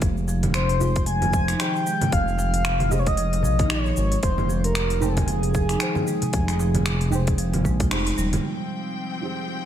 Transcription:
Already playing: D#4 G4 G#4 C5 G5
0.02 F1 F3, kick, open hi-hat, shaker
0.17 shaker
0.28 F3, darbuka ka, shaker
0.43 open hi-hat, low conga, shaker
0.54 C3 C5, finger snap, open hi-hat, shaker
0.69 open hi-hat, shaker
0.79 G#3 D#4 F4 G#4, darbuka ka, darbuka dum, shaker
0.83 C5
0.96 kick, open hi-hat, shaker
1.06 F3 G#5, open hi-hat, shaker
1.22 open hi-hat, low conga, shaker
1.33 F3, kick, shaker
1.48 D#4, finger snap, open hi-hat, shaker
1.58 D#3 D#4 G4 G#4 G5, finger snap, open hi-hat, shaker
1.62 C5
1.76 shaker
1.87 G#3, shaker
2.01 open hi-hat, darbuka dum, low conga, shaker
2.12 F1 F3 F5, kick, open hi-hat, shaker
2.28 shaker
2.38 F3, darbuka ka, darbuka tek, shaker
2.54 open hi-hat, shaker
2.65 C3, finger snap, open hi-hat, shaker
2.80 open hi-hat, low conga, shaker
2.89 G#3 D#4 G4 G#4 C5 D#5, darbuka ka, darbuka dum, shaker
2.99 C#5
3.06 D#5, kick, open hi-hat, shaker
3.17 F3, open hi-hat, shaker
3.33 open hi-hat, darbuka ka, shaker
3.43 A#1 F3, darbuka dum, shaker
3.59 D#4, kick, open hi-hat, low conga, shaker
3.68 D#3 D#4 G4 G#4 C#5 D#5, finger snap, open hi-hat, shaker
3.86 shaker
3.97 G#1 G#3, shaker
4.12 open hi-hat, shaker
4.23 F1 F3 C5, kick, open hi-hat, shaker
4.38 low conga, shaker
4.49 F3, darbuka ka, shaker
4.64 A#4, open hi-hat, shaker
4.75 finger snap, open hi-hat, shaker
4.90 open hi-hat, shaker
5.00 G#3 D#4 G#4 G5, darbuka ka, darbuka dum, shaker
5.04 C5
5.17 kick, open hi-hat, low conga, shaker
5.28 F3, open hi-hat, shaker
5.43 open hi-hat, shaker
5.54 F3, kick, shaker
5.69 D#4, finger snap, open hi-hat, shaker
5.78 D#3 D#4 G#4 G5, finger snap, open hi-hat, shaker
5.82 C5
5.95 low conga, shaker
6.07 G#3, shaker
6.22 open hi-hat, darbuka dum, shaker
6.33 F1 F3, kick, open hi-hat, shaker
6.48 finger snap, open hi-hat, shaker
6.59 F3, darbuka ka, darbuka tek, shaker
6.75 open hi-hat, low conga, shaker
6.86 C3, finger snap, open hi-hat, shaker
7.01 open hi-hat, shaker
7.10 G#3 D#4 G#4 G5, darbuka ka, darbuka dum, shaker
7.14 C5
7.27 kick, open hi-hat, shaker
7.38 F3, open hi-hat, shaker
7.53 open hi-hat, darbuka ka, low conga, shaker
7.64 A#1 G#3, kick, darbuka tek, darbuka dum, shaker
7.80 F4, kick, open hi-hat, darbuka tek, shaker
7.90 F1 D#4 G4 G#4 C5, finger snap, open hi-hat, shaker
8.07 open hi-hat, shaker
8.18 D#1 G3, shaker
8.33 open hi-hat, low conga, shaker
8.44 F3 C4 G5, shaker
8.60 shaker
8.70 shaker
8.86 shaker
8.96 shaker
9.21 F3 D#4 G4 G#4, shaker
9.25 C5
9.49 shaker

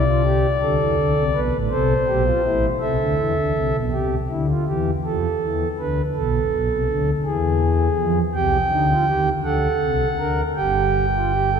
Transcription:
Already playing: C2 C3 D5
0.06 F4
0.24 G4
0.60 D2 D3 A4
0.79 E2 E3
0.97 D2 D3
1.15 C2 C3
1.34 B1 B2 B4
1.52 A1 A2
1.70 C2 C3 A4 C5
2.07 B1 B2 G4
2.25 F4
2.44 A1 A2 E4
2.80 C2 C3 A4 E5
2.99 D2 D3
3.18 E2 E3
3.36 D2 D3
3.54 C2 C3
3.73 B1 B2
3.92 C2 C3 G4
4.29 D2 D3 E4
4.48 F4
4.67 E2 E3 G4
5.04 F2 F3 A4
5.42 E2 E3
5.79 D2 D3 B4
6.15 B1 B2 A4
6.52 B1 B2
6.70 C2 C3
6.88 D2 D3
7.25 E2 E3 G#4
7.98 F2 F3
8.35 C2 C3 G4 G5
8.71 D2 D3 D#4
8.89 F4
9.07 D#2 D#3 G4
9.44 D2 D3 A4 F#5
9.81 C2 C3
10.19 D2 D3 A#4
10.56 G1 G2 G4 G5
11.15 F4
11.34 G4
11.53 A4

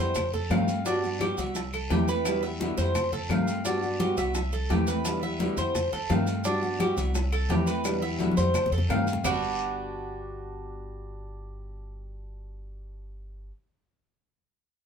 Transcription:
Already playing: E4
0.00 F2 G3 B3 C5
0.15 muted nylon-string guitar stroke, high bongo, high conga, low conga, long guiro, claves, maracas
0.33 A4, high bongo, high conga, low conga, maracas
0.49 G2 C3 D#3 A3 C4 F4 F5, high bongo, low bongo, high conga, short guiro, claves, maracas
0.67 A3 C4 F4, high conga, short guiro, maracas
0.84 G3 B3 D4 F#4, high bongo, high conga, long guiro, maracas
1.02 B3 F#4, high conga, maracas
1.19 G3 B3 F#4 G4, high bongo, high conga, short guiro, claves, maracas
1.37 C2 B3 F#4 E5, high conga, short guiro, maracas
1.55 muted nylon-string guitar stroke, high bongo, high conga, long guiro, maracas
1.73 A4, high conga, claves, maracas
1.89 E2 C3 E3 A3 C4 E4 G4, high bongo, low bongo, high conga, short guiro, maracas
2.07 C4 E4 B4, high conga, short guiro, maracas
2.25 B2 D3 G3 B3 E4, high bongo, high conga, long guiro, claves, maracas
2.43 G3 B3 E4 E5, high bongo, high conga, maracas
2.60 B2 D3 G3 B3 E4, high bongo, high conga, short guiro, maracas
2.77 F2 G3 B3 E4 C5, high bongo, high conga, short guiro, maracas
2.94 muted nylon-string guitar stroke, high bongo, high conga, low conga, long guiro, claves, maracas
3.13 A4, high bongo, high conga, low conga, maracas
3.29 G2 C3 D#3 A3 C4 F4 F5, high bongo, low bongo, high conga, short guiro, claves, maracas
3.46 A3 C4 F4, high conga, short guiro, maracas
3.64 G3 B3 D4 F#4, high bongo, high conga, long guiro, maracas
3.82 B3 F#4, high conga, maracas
3.99 G3 B3 F#4 G4, high bongo, high conga, short guiro, maracas
4.17 C2 B3 F#4 E5, high conga, short guiro, maracas
4.34 muted nylon-string guitar stroke, high bongo, high conga, long guiro, maracas
4.52 A4, high conga, maracas
4.69 E2 C3 E3 A3 C4 E4 G4, high bongo, low bongo, high conga, short guiro, maracas
4.87 A3 C4 E4 B4, high conga, short guiro, maracas
5.05 B2 D3 G3 B3 E4, high bongo, high conga, long guiro, maracas
5.21 G3 B3 E4 E5, high bongo, high conga, maracas
5.39 B2 D3 G3 B3 E4, high bongo, high conga, short guiro, maracas
5.57 F2 G3 B3 E4 C5, high bongo, high conga, short guiro, maracas
5.75 muted nylon-string guitar stroke, high bongo, high conga, low conga, long guiro, maracas
5.92 F2 A4, high bongo, high conga, maracas
6.09 G2 C3 D#3 A3 C4 F4 F5, high bongo, low bongo, high conga, short guiro, maracas
6.27 A3 C4 F4, high conga, short guiro, maracas
6.44 G3 B3 D4 F#4, high bongo, high conga, long guiro, maracas
6.62 B3 F#4, high conga, maracas
6.79 G3 B3 F#4 G4, high bongo, high conga, short guiro, claves, maracas
6.96 C2 B3 F#4 E5, high conga, short guiro, maracas
7.14 muted nylon-string guitar stroke, high bongo, high conga, long guiro, maracas
7.32 A4, high conga, claves, maracas
7.48 E2 C3 E3 A3 C4 E4 G4, high bongo, low bongo, high conga, short guiro, maracas
7.66 A3 C4 E4 B4, high conga, short guiro, maracas
7.83 B2 D3 G3 B3 E4, high bongo, high conga, long guiro, claves, maracas
8.02 G3 B3 E4 E5, high bongo, high conga, maracas
8.18 B2 D3 G3 B3 E4, high bongo, high conga, short guiro, maracas
8.32 high conga
8.36 F2 G3 B3 E4 C5, high bongo, short guiro, maracas
8.43 high conga
8.54 muted nylon-string guitar stroke, high bongo, low conga, long guiro, claves, maracas
8.66 low conga
8.72 F2 A4, high bongo, maracas
8.78 low conga
8.88 G2 C3 D#3 A3 C4 F4 F5, high bongo, low bongo, low conga, short guiro, claves, maracas
9.06 A3 C4 F4, short guiro, maracas
9.13 low conga
9.23 G1 G3 B3 D4 F#4, low bongo, low conga, long guiro, claves, maracas

